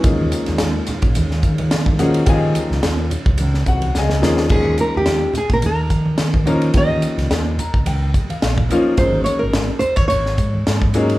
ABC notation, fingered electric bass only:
X:1
M:4/4
L:1/16
Q:"Swing 16ths" 1/4=107
K:Ebmix
V:1 name="Fingered electric bass" clef=bass
E,,2 z E,, E,, z2 B,,, E,,2 E,2 E,4 | E,2 z D,, E,,2 z D,, D,,2 C,,2 D,,2 E,,2 | E,,2 z E,, E,, z2 B,,, E,,2 E,2 E,4 | E,2 z D,, E,,2 z D,, D,,2 z2 B,,,2 z2 |
A,,,2 z A,,, A,,, z2 E,, A,,,2 A,,2 A,,4 |]